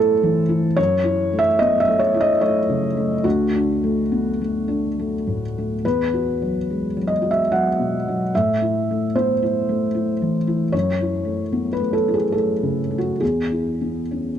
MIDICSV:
0, 0, Header, 1, 2, 480
1, 0, Start_track
1, 0, Tempo, 807537
1, 462, Time_signature, 3, 2, 24, 8
1, 1424, Tempo, 855920
1, 3824, Tempo, 817439
1, 5744, Tempo, 801068
1, 7184, Tempo, 884956
1, 8290, End_track
2, 0, Start_track
2, 0, Title_t, "Felt piano"
2, 0, Program_c, 0, 0
2, 0, Control_c, 0, 64, 127
2, 0, Note_on_c, 0, 45, 59
2, 0, Note_on_c, 0, 57, 50
2, 0, Note_on_c, 0, 59, 43
2, 0, Note_on_c, 0, 64, 51
2, 0, Note_on_c, 0, 69, 85
2, 0, Note_on_c, 0, 72, 86
2, 79, Note_off_c, 0, 57, 0
2, 137, Note_on_c, 0, 52, 47
2, 237, Note_off_c, 0, 64, 0
2, 291, Note_on_c, 0, 64, 49
2, 395, Note_off_c, 0, 52, 0
2, 441, Note_off_c, 0, 45, 0
2, 455, Note_on_c, 0, 73, 96
2, 457, Note_off_c, 0, 64, 0
2, 458, Note_off_c, 0, 69, 0
2, 459, Note_on_c, 0, 42, 59
2, 474, Control_c, 0, 64, 0
2, 476, Note_off_c, 0, 59, 0
2, 476, Note_off_c, 0, 72, 0
2, 567, Control_c, 0, 64, 127
2, 617, Note_on_c, 0, 64, 53
2, 791, Note_on_c, 0, 57, 49
2, 819, Note_off_c, 0, 73, 0
2, 824, Note_on_c, 0, 76, 94
2, 876, Note_off_c, 0, 64, 0
2, 943, Note_off_c, 0, 76, 0
2, 945, Note_on_c, 0, 75, 97
2, 956, Note_on_c, 0, 59, 44
2, 1042, Note_off_c, 0, 57, 0
2, 1063, Note_off_c, 0, 75, 0
2, 1071, Note_on_c, 0, 76, 83
2, 1109, Note_off_c, 0, 59, 0
2, 1115, Note_on_c, 0, 57, 48
2, 1185, Note_on_c, 0, 73, 84
2, 1186, Note_off_c, 0, 76, 0
2, 1274, Note_on_c, 0, 64, 49
2, 1304, Note_off_c, 0, 73, 0
2, 1311, Note_on_c, 0, 75, 92
2, 1365, Note_off_c, 0, 57, 0
2, 1428, Note_off_c, 0, 75, 0
2, 1433, Note_on_c, 0, 73, 83
2, 1437, Note_on_c, 0, 57, 50
2, 1522, Note_off_c, 0, 64, 0
2, 1592, Note_on_c, 0, 49, 41
2, 1680, Note_off_c, 0, 57, 0
2, 1747, Note_on_c, 0, 57, 43
2, 1840, Note_off_c, 0, 49, 0
2, 1875, Note_off_c, 0, 42, 0
2, 1897, Note_on_c, 0, 66, 73
2, 1900, Note_on_c, 0, 38, 51
2, 1904, Note_off_c, 0, 57, 0
2, 1904, Note_off_c, 0, 73, 0
2, 1911, Control_c, 0, 64, 0
2, 2019, Control_c, 0, 64, 127
2, 2068, Note_on_c, 0, 62, 43
2, 2233, Note_on_c, 0, 57, 42
2, 2324, Note_off_c, 0, 62, 0
2, 2389, Note_on_c, 0, 59, 39
2, 2483, Note_off_c, 0, 57, 0
2, 2544, Note_off_c, 0, 59, 0
2, 2556, Note_on_c, 0, 57, 36
2, 2705, Note_on_c, 0, 62, 40
2, 2803, Note_off_c, 0, 57, 0
2, 2881, Note_on_c, 0, 57, 38
2, 2961, Note_off_c, 0, 62, 0
2, 3037, Note_on_c, 0, 45, 32
2, 3105, Note_off_c, 0, 66, 0
2, 3133, Note_off_c, 0, 57, 0
2, 3211, Note_on_c, 0, 57, 38
2, 3292, Note_off_c, 0, 45, 0
2, 3328, Note_off_c, 0, 38, 0
2, 3358, Control_c, 0, 64, 0
2, 3361, Note_off_c, 0, 57, 0
2, 3361, Note_on_c, 0, 71, 70
2, 3362, Note_on_c, 0, 40, 45
2, 3443, Control_c, 0, 64, 127
2, 3523, Note_on_c, 0, 66, 39
2, 3680, Note_on_c, 0, 54, 35
2, 3768, Note_off_c, 0, 66, 0
2, 3841, Note_on_c, 0, 56, 35
2, 3927, Note_off_c, 0, 54, 0
2, 3994, Note_off_c, 0, 56, 0
2, 3996, Note_on_c, 0, 54, 38
2, 4058, Note_on_c, 0, 75, 71
2, 4071, Note_off_c, 0, 71, 0
2, 4143, Note_on_c, 0, 66, 37
2, 4182, Note_off_c, 0, 75, 0
2, 4196, Note_on_c, 0, 76, 70
2, 4248, Note_off_c, 0, 54, 0
2, 4312, Note_off_c, 0, 76, 0
2, 4318, Note_on_c, 0, 78, 69
2, 4320, Note_on_c, 0, 54, 39
2, 4403, Note_off_c, 0, 66, 0
2, 4480, Note_on_c, 0, 47, 37
2, 4572, Note_off_c, 0, 54, 0
2, 4651, Note_on_c, 0, 54, 38
2, 4731, Note_off_c, 0, 47, 0
2, 4773, Note_off_c, 0, 40, 0
2, 4795, Note_off_c, 0, 78, 0
2, 4799, Control_c, 0, 64, 0
2, 4800, Note_off_c, 0, 54, 0
2, 4808, Note_on_c, 0, 76, 72
2, 4815, Note_on_c, 0, 45, 45
2, 4907, Control_c, 0, 64, 127
2, 4966, Note_on_c, 0, 64, 39
2, 5135, Note_on_c, 0, 57, 37
2, 5211, Note_off_c, 0, 64, 0
2, 5275, Note_off_c, 0, 76, 0
2, 5279, Note_on_c, 0, 59, 35
2, 5280, Note_on_c, 0, 72, 71
2, 5375, Note_off_c, 0, 57, 0
2, 5431, Note_off_c, 0, 59, 0
2, 5439, Note_on_c, 0, 64, 36
2, 5594, Note_on_c, 0, 57, 41
2, 5687, Note_off_c, 0, 64, 0
2, 5744, Note_on_c, 0, 64, 38
2, 5845, Note_off_c, 0, 57, 0
2, 5908, Note_on_c, 0, 52, 34
2, 6001, Note_off_c, 0, 64, 0
2, 6060, Note_on_c, 0, 64, 40
2, 6159, Note_off_c, 0, 52, 0
2, 6208, Note_off_c, 0, 45, 0
2, 6211, Note_on_c, 0, 73, 70
2, 6215, Note_on_c, 0, 42, 50
2, 6217, Note_off_c, 0, 64, 0
2, 6227, Note_off_c, 0, 72, 0
2, 6227, Control_c, 0, 64, 0
2, 6306, Control_c, 0, 64, 127
2, 6383, Note_on_c, 0, 64, 41
2, 6524, Note_on_c, 0, 57, 38
2, 6630, Note_off_c, 0, 64, 0
2, 6691, Note_on_c, 0, 59, 36
2, 6784, Note_off_c, 0, 57, 0
2, 6808, Note_off_c, 0, 73, 0
2, 6812, Note_on_c, 0, 71, 63
2, 6853, Note_off_c, 0, 59, 0
2, 6853, Note_on_c, 0, 57, 39
2, 6934, Note_off_c, 0, 71, 0
2, 6934, Note_on_c, 0, 69, 67
2, 7025, Note_on_c, 0, 64, 39
2, 7058, Note_off_c, 0, 69, 0
2, 7058, Note_on_c, 0, 68, 59
2, 7116, Note_off_c, 0, 57, 0
2, 7169, Note_on_c, 0, 69, 62
2, 7180, Note_on_c, 0, 57, 39
2, 7183, Note_off_c, 0, 68, 0
2, 7278, Note_off_c, 0, 64, 0
2, 7336, Note_on_c, 0, 49, 36
2, 7428, Note_off_c, 0, 57, 0
2, 7487, Note_on_c, 0, 57, 34
2, 7526, Note_off_c, 0, 69, 0
2, 7529, Note_on_c, 0, 66, 53
2, 7589, Note_off_c, 0, 49, 0
2, 7629, Note_off_c, 0, 42, 0
2, 7649, Note_on_c, 0, 68, 57
2, 7650, Note_off_c, 0, 57, 0
2, 7651, Note_off_c, 0, 66, 0
2, 7656, Note_on_c, 0, 40, 40
2, 7663, Control_c, 0, 64, 0
2, 7748, Control_c, 0, 64, 127
2, 7818, Note_on_c, 0, 64, 32
2, 7977, Note_on_c, 0, 59, 29
2, 8077, Note_off_c, 0, 64, 0
2, 8140, Note_on_c, 0, 61, 29
2, 8238, Note_off_c, 0, 59, 0
2, 8290, Note_off_c, 0, 40, 0
2, 8290, Note_off_c, 0, 61, 0
2, 8290, Note_off_c, 0, 68, 0
2, 8290, End_track
0, 0, End_of_file